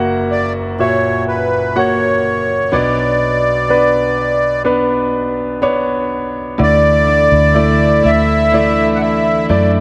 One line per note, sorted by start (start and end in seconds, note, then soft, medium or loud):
0.00 2.69 F#1 medium
0.00 2.68 F#2 medium
0.00 1.76 A#3 medium
0.00 0.80 F#4 medium
0.00 0.81 E5 medium
0.00 0.75 F#5 medium
0.31 0.53 D5 medium
0.79 1.71 A#2 medium
0.79 1.71 F#4 medium
0.79 1.24 C#5 medium
0.79 1.72 E5 medium
1.28 1.77 B4 medium
1.76 2.68 A#3 medium
1.76 2.68 F#4 medium
1.76 2.76 C#5 medium
1.76 2.68 F#5 medium
2.72 6.56 B1 soft
2.72 6.56 B2 soft
2.72 3.64 B3 medium
2.72 3.64 D4 medium
2.72 3.65 D5 medium
2.72 4.62 D5 medium
3.69 4.61 B3 medium
3.69 4.61 D4 medium
3.69 4.62 B4 medium
4.64 5.57 B3 medium
4.64 5.57 D4 medium
4.64 5.58 B4 medium
5.62 6.54 B3 medium
5.62 6.55 D4 medium
5.62 6.55 C#5 medium
6.58 7.28 D2 medium
6.58 8.00 D3 soft
6.58 9.80 D3 medium
6.58 9.80 E3 medium
6.58 7.51 A3 medium
6.58 9.80 A3 medium
6.58 7.51 E4 medium
6.58 9.80 E4 medium
6.58 7.52 D5 medium
6.63 8.11 D5 loud
7.07 9.48 D4 soft
7.32 8.01 D2 medium
7.55 8.47 A3 medium
7.55 8.48 E4 medium
7.55 8.48 D5 medium
8.04 9.46 D2 medium
8.04 9.80 A3 medium
8.04 8.98 E5 loud
8.52 9.80 E3 medium
8.52 9.45 A3 medium
8.52 9.46 E4 soft
8.52 9.45 D5 medium
8.95 9.02 F#5 medium
9.02 9.47 E5 medium
9.49 9.80 F#2 medium
9.49 9.80 A3 medium
9.49 9.80 D4 medium
9.49 9.80 E4 medium
9.49 9.72 D5 medium
9.49 9.80 D5 medium